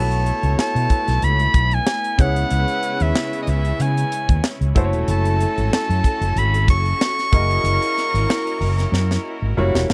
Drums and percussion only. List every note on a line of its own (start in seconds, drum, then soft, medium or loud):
0.11 closed hi-hat medium
0.26 closed hi-hat medium
0.43 closed hi-hat medium
0.59 snare loud
0.76 closed hi-hat medium
0.90 kick medium
0.90 closed hi-hat medium
1.08 snare soft
1.08 closed hi-hat medium
1.22 closed hi-hat medium
1.39 closed hi-hat medium
1.54 kick medium
1.54 closed hi-hat medium
1.71 closed hi-hat soft
1.87 snare loud
2.04 closed hi-hat medium
2.19 kick loud
2.19 closed hi-hat medium
2.36 closed hi-hat medium
2.51 closed hi-hat loud
2.68 closed hi-hat medium
2.83 closed hi-hat medium
3.00 closed hi-hat medium
3.15 snare loud
3.33 closed hi-hat medium
3.47 closed hi-hat medium
3.65 closed hi-hat soft
3.80 closed hi-hat medium
3.97 closed hi-hat medium
4.12 closed hi-hat medium
4.29 kick medium
4.29 closed hi-hat soft
4.44 snare loud
4.61 closed hi-hat soft
4.76 kick loud
4.76 closed hi-hat medium
4.93 closed hi-hat medium
5.08 closed hi-hat loud
5.25 closed hi-hat medium
5.40 closed hi-hat medium
5.58 closed hi-hat medium
5.73 snare loud
5.90 closed hi-hat medium
6.04 kick medium
6.04 closed hi-hat medium
6.22 closed hi-hat medium
6.37 closed hi-hat medium
6.54 closed hi-hat medium
6.68 kick loud
6.68 closed hi-hat medium
6.86 closed hi-hat soft
7.01 snare loud
7.19 snare soft
7.19 closed hi-hat medium
7.33 kick loud
7.33 closed hi-hat medium
7.51 closed hi-hat medium
7.65 closed hi-hat loud
7.82 closed hi-hat medium
7.98 snare soft
7.98 closed hi-hat medium
8.15 closed hi-hat medium
8.30 snare loud
8.47 closed hi-hat medium
8.61 open hi-hat medium
8.78 snare soft
8.78 closed hi-hat medium
8.94 snare medium
9.11 snare medium
9.75 snare medium
9.90 snare loud